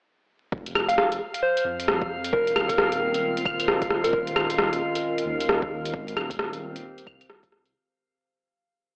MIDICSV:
0, 0, Header, 1, 6, 480
1, 0, Start_track
1, 0, Key_signature, -4, "minor"
1, 0, Tempo, 451128
1, 559, Time_signature, 4, 2, 24, 8
1, 9528, End_track
2, 0, Start_track
2, 0, Title_t, "Synth texture"
2, 0, Program_c, 0, 99
2, 558, Note_on_c, 0, 77, 82
2, 8250, Note_off_c, 0, 77, 0
2, 9528, End_track
3, 0, Start_track
3, 0, Title_t, "Soft synth lead"
3, 0, Program_c, 1, 80
3, 941, Note_on_c, 1, 77, 80
3, 1003, Note_off_c, 1, 77, 0
3, 1041, Note_on_c, 1, 77, 74
3, 1134, Note_off_c, 1, 77, 0
3, 1518, Note_on_c, 1, 72, 93
3, 1773, Note_off_c, 1, 72, 0
3, 2476, Note_on_c, 1, 70, 91
3, 2732, Note_off_c, 1, 70, 0
3, 2854, Note_on_c, 1, 70, 94
3, 3521, Note_off_c, 1, 70, 0
3, 4297, Note_on_c, 1, 70, 92
3, 4453, Note_off_c, 1, 70, 0
3, 9528, End_track
4, 0, Start_track
4, 0, Title_t, "Ambient pad"
4, 0, Program_c, 2, 92
4, 2480, Note_on_c, 2, 51, 86
4, 2615, Note_on_c, 2, 60, 85
4, 2629, Note_on_c, 2, 56, 73
4, 2924, Note_on_c, 2, 65, 76
4, 3280, Note_on_c, 2, 72, 81
4, 4396, Note_off_c, 2, 60, 0
4, 4682, Note_on_c, 2, 61, 81
4, 4957, Note_on_c, 2, 70, 90
4, 5183, Note_off_c, 2, 72, 0
4, 6320, Note_off_c, 2, 61, 0
4, 6458, Note_on_c, 2, 60, 76
4, 6761, Note_on_c, 2, 67, 70
4, 6907, Note_on_c, 2, 72, 84
4, 7096, Note_off_c, 2, 70, 0
4, 7101, Note_off_c, 2, 65, 0
4, 8232, Note_off_c, 2, 72, 0
4, 8235, Note_off_c, 2, 56, 0
4, 8236, Note_off_c, 2, 67, 0
4, 8239, Note_off_c, 2, 51, 0
4, 8242, Note_off_c, 2, 60, 0
4, 9528, End_track
5, 0, Start_track
5, 0, Title_t, "Detuned saw bass"
5, 0, Program_c, 3, 39
5, 554, Note_on_c, 3, 29, 96
5, 1264, Note_off_c, 3, 29, 0
5, 1753, Note_on_c, 3, 41, 82
5, 2464, Note_off_c, 3, 41, 0
5, 2476, Note_on_c, 3, 29, 100
5, 2703, Note_off_c, 3, 29, 0
5, 2713, Note_on_c, 3, 27, 88
5, 4384, Note_off_c, 3, 27, 0
5, 4391, Note_on_c, 3, 27, 96
5, 5103, Note_off_c, 3, 27, 0
5, 5592, Note_on_c, 3, 39, 78
5, 6304, Note_off_c, 3, 39, 0
5, 6313, Note_on_c, 3, 32, 96
5, 6541, Note_off_c, 3, 32, 0
5, 6555, Note_on_c, 3, 27, 86
5, 7509, Note_off_c, 3, 27, 0
5, 7516, Note_on_c, 3, 36, 97
5, 8225, Note_off_c, 3, 36, 0
5, 9528, End_track
6, 0, Start_track
6, 0, Title_t, "Drums"
6, 555, Note_on_c, 9, 36, 112
6, 662, Note_off_c, 9, 36, 0
6, 706, Note_on_c, 9, 42, 31
6, 802, Note_on_c, 9, 37, 60
6, 802, Note_on_c, 9, 75, 52
6, 812, Note_off_c, 9, 42, 0
6, 908, Note_off_c, 9, 37, 0
6, 908, Note_off_c, 9, 75, 0
6, 948, Note_on_c, 9, 42, 53
6, 1042, Note_on_c, 9, 37, 99
6, 1055, Note_off_c, 9, 42, 0
6, 1149, Note_off_c, 9, 37, 0
6, 1191, Note_on_c, 9, 42, 41
6, 1297, Note_off_c, 9, 42, 0
6, 1430, Note_on_c, 9, 42, 55
6, 1536, Note_off_c, 9, 42, 0
6, 1671, Note_on_c, 9, 42, 43
6, 1777, Note_off_c, 9, 42, 0
6, 1911, Note_on_c, 9, 42, 56
6, 2002, Note_on_c, 9, 37, 97
6, 2018, Note_off_c, 9, 42, 0
6, 2108, Note_off_c, 9, 37, 0
6, 2144, Note_on_c, 9, 36, 100
6, 2251, Note_off_c, 9, 36, 0
6, 2387, Note_on_c, 9, 42, 54
6, 2478, Note_on_c, 9, 36, 117
6, 2494, Note_off_c, 9, 42, 0
6, 2584, Note_off_c, 9, 36, 0
6, 2631, Note_on_c, 9, 42, 31
6, 2723, Note_on_c, 9, 37, 59
6, 2723, Note_on_c, 9, 75, 53
6, 2738, Note_off_c, 9, 42, 0
6, 2829, Note_off_c, 9, 37, 0
6, 2829, Note_off_c, 9, 75, 0
6, 2864, Note_on_c, 9, 36, 60
6, 2867, Note_on_c, 9, 42, 52
6, 2961, Note_on_c, 9, 37, 102
6, 2971, Note_off_c, 9, 36, 0
6, 2973, Note_off_c, 9, 42, 0
6, 3067, Note_off_c, 9, 37, 0
6, 3107, Note_on_c, 9, 42, 41
6, 3214, Note_off_c, 9, 42, 0
6, 3345, Note_on_c, 9, 42, 57
6, 3451, Note_off_c, 9, 42, 0
6, 3587, Note_on_c, 9, 42, 45
6, 3675, Note_on_c, 9, 36, 107
6, 3680, Note_on_c, 9, 75, 51
6, 3693, Note_off_c, 9, 42, 0
6, 3781, Note_off_c, 9, 36, 0
6, 3786, Note_off_c, 9, 75, 0
6, 3826, Note_on_c, 9, 42, 54
6, 3826, Note_on_c, 9, 75, 36
6, 3917, Note_on_c, 9, 37, 101
6, 3933, Note_off_c, 9, 42, 0
6, 3933, Note_off_c, 9, 75, 0
6, 4023, Note_off_c, 9, 37, 0
6, 4060, Note_on_c, 9, 36, 100
6, 4061, Note_on_c, 9, 42, 32
6, 4155, Note_on_c, 9, 37, 61
6, 4167, Note_off_c, 9, 36, 0
6, 4167, Note_off_c, 9, 42, 0
6, 4261, Note_off_c, 9, 37, 0
6, 4302, Note_on_c, 9, 42, 58
6, 4394, Note_on_c, 9, 36, 118
6, 4408, Note_off_c, 9, 42, 0
6, 4500, Note_off_c, 9, 36, 0
6, 4546, Note_on_c, 9, 42, 31
6, 4639, Note_on_c, 9, 37, 64
6, 4639, Note_on_c, 9, 75, 49
6, 4652, Note_off_c, 9, 42, 0
6, 4745, Note_off_c, 9, 37, 0
6, 4745, Note_off_c, 9, 75, 0
6, 4787, Note_on_c, 9, 42, 51
6, 4878, Note_on_c, 9, 37, 102
6, 4893, Note_off_c, 9, 42, 0
6, 4985, Note_off_c, 9, 37, 0
6, 5031, Note_on_c, 9, 42, 40
6, 5138, Note_off_c, 9, 42, 0
6, 5271, Note_on_c, 9, 42, 55
6, 5377, Note_off_c, 9, 42, 0
6, 5513, Note_on_c, 9, 42, 43
6, 5620, Note_off_c, 9, 42, 0
6, 5750, Note_on_c, 9, 42, 54
6, 5842, Note_on_c, 9, 37, 101
6, 5856, Note_off_c, 9, 42, 0
6, 5948, Note_off_c, 9, 37, 0
6, 5981, Note_on_c, 9, 36, 104
6, 6088, Note_off_c, 9, 36, 0
6, 6228, Note_on_c, 9, 42, 58
6, 6315, Note_on_c, 9, 36, 115
6, 6335, Note_off_c, 9, 42, 0
6, 6422, Note_off_c, 9, 36, 0
6, 6471, Note_on_c, 9, 42, 29
6, 6561, Note_on_c, 9, 37, 63
6, 6561, Note_on_c, 9, 75, 49
6, 6577, Note_off_c, 9, 42, 0
6, 6668, Note_off_c, 9, 37, 0
6, 6668, Note_off_c, 9, 75, 0
6, 6703, Note_on_c, 9, 36, 60
6, 6710, Note_on_c, 9, 42, 51
6, 6800, Note_on_c, 9, 37, 100
6, 6809, Note_off_c, 9, 36, 0
6, 6817, Note_off_c, 9, 42, 0
6, 6906, Note_off_c, 9, 37, 0
6, 6950, Note_on_c, 9, 42, 40
6, 7057, Note_off_c, 9, 42, 0
6, 7191, Note_on_c, 9, 42, 52
6, 7298, Note_off_c, 9, 42, 0
6, 7426, Note_on_c, 9, 42, 43
6, 7518, Note_on_c, 9, 36, 106
6, 7522, Note_on_c, 9, 75, 46
6, 7533, Note_off_c, 9, 42, 0
6, 7625, Note_off_c, 9, 36, 0
6, 7629, Note_off_c, 9, 75, 0
6, 7671, Note_on_c, 9, 42, 52
6, 7671, Note_on_c, 9, 75, 33
6, 7763, Note_on_c, 9, 37, 102
6, 7777, Note_off_c, 9, 42, 0
6, 7777, Note_off_c, 9, 75, 0
6, 7869, Note_off_c, 9, 37, 0
6, 7905, Note_on_c, 9, 36, 106
6, 7910, Note_on_c, 9, 42, 30
6, 8004, Note_on_c, 9, 37, 61
6, 8011, Note_off_c, 9, 36, 0
6, 8016, Note_off_c, 9, 42, 0
6, 8110, Note_off_c, 9, 37, 0
6, 8144, Note_on_c, 9, 42, 55
6, 8251, Note_off_c, 9, 42, 0
6, 9528, End_track
0, 0, End_of_file